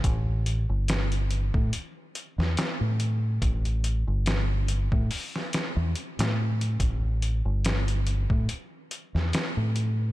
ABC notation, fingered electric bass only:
X:1
M:4/4
L:1/16
Q:"Swing 16ths" 1/4=71
K:C
V:1 name="Fingered electric bass" clef=bass
A,,,3 G,,,4 A,, z3 E,, z A,,3 | A,,,3 G,,,4 A,, z3 E,, z A,,3 | A,,,3 G,,,4 A,, z3 E,, z A,,3 |]